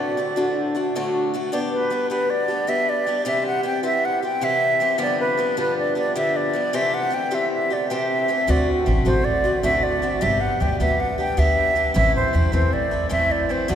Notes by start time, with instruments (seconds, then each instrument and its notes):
Already playing: steel-string acoustic guitar D2 A2 D3 A3 D4 F#4, flute D5
0.17 steel-string acoustic guitar D3 A3 D4 F#4
0.36 steel-string acoustic guitar D2 A2 D3 A3 D4 F#4
0.75 steel-string acoustic guitar D3 A3 D4 F#4
0.95 steel-string acoustic guitar D2 A2 D3 A3 D4 F#4
1.34 steel-string acoustic guitar D3 A3 D4 F#4
1.52 steel-string acoustic guitar G3 B3 D4 G4, flute D5
1.71 flute B4
1.90 steel-string acoustic guitar G3 B3 D4 G4
2.10 steel-string acoustic guitar G3 B3 D4 G4, flute B4
2.30 flute D5
2.48 steel-string acoustic guitar B3 D4 G4
2.67 steel-string acoustic guitar G3 B3 D4 G4, flute E5
2.89 flute D5
3.06 steel-string acoustic guitar G3 B3 D4 G4
3.25 steel-string acoustic guitar C3 E3 G3 C4 G4, flute E5
3.46 flute F#5
3.63 steel-string acoustic guitar E3 G3 C4 G4, flute G5
3.83 steel-string acoustic guitar C3 E3 G3 C4 G4, flute E5
4.05 flute F#5
4.22 steel-string acoustic guitar G3 C4 G4, flute G5
4.41 steel-string acoustic guitar C3 E3 G3 C4 G4, flute E5
4.80 steel-string acoustic guitar E3 G3 C4 G4
4.98 steel-string acoustic guitar G2 D3 F3 G3 B3 D4, flute D5
5.20 flute B4
5.37 steel-string acoustic guitar F3 G3 B3 D4
5.57 steel-string acoustic guitar G2 D3 F3 G3 B3 D4, flute B4
5.78 flute D5
5.95 steel-string acoustic guitar F3 G3 B3 D4, flute D5
6.15 steel-string acoustic guitar G2 D3 F3 G3 B3 D4, flute E5
6.36 flute D5
6.53 steel-string acoustic guitar F3 G3 B3 D4
6.73 steel-string acoustic guitar C3 E3 A3 C4 G4, flute E5
6.94 flute F#5
7.10 steel-string acoustic guitar E3 A3 C4 G4, flute G5
7.31 steel-string acoustic guitar C3 E3 A3 C4 G4, flute E5
7.53 flute E5
7.70 steel-string acoustic guitar A3 C4 G4, flute D5
7.90 steel-string acoustic guitar C3 E3 A3 C4 G4, flute E5
8.28 steel-string acoustic guitar E3 A3 C4 G4
8.47 steel-string acoustic guitar D2 A2 D3 A3 C4 F#4, upright bass D2, flute D5
8.86 upright bass A1, steel-string acoustic guitar D3 A3 C4 F#4
9.05 upright bass A1, steel-string acoustic guitar D2 A2 D3 A3 C4 F#4, flute C5
9.24 flute D5
9.44 steel-string acoustic guitar D3 A3 C4 F#4
9.63 upright bass A1, steel-string acoustic guitar D2 A2 D3 A3 C4 F#4, flute E5
9.83 flute D5
10.02 steel-string acoustic guitar D3 A3 C4 F#4
10.21 upright bass G1, steel-string acoustic guitar G3 B3 D4 G4, flute E5
10.41 flute F#5
10.60 upright bass D2, steel-string acoustic guitar G3 B3 D4 G4, flute G5
10.80 upright bass D2, steel-string acoustic guitar G3 B3 D4 G4, flute E5
11.00 flute F#5
11.18 steel-string acoustic guitar B3 D4 G4, flute G5
11.37 upright bass D2, steel-string acoustic guitar G3 B3 D4 G4, flute E5
11.75 steel-string acoustic guitar G3 B3 D4 G4
11.94 upright bass A1, steel-string acoustic guitar A2 E3 A3 C4 E4, flute E5
12.16 flute C5
12.33 upright bass E2, steel-string acoustic guitar E3 A3 C4 E4
12.52 upright bass E2, steel-string acoustic guitar A2 E3 A3 C4 E4, flute C5
12.73 flute D5
12.91 steel-string acoustic guitar A3 C4 E4
13.09 upright bass E2, steel-string acoustic guitar A2 E3 A3 C4 E4, flute E5
13.31 flute D5
13.49 steel-string acoustic guitar E3 A3 C4 E4, flute C5
13.68 steel-string acoustic guitar D2 A2 D3 A3 D4 F#4, upright bass D2, flute D5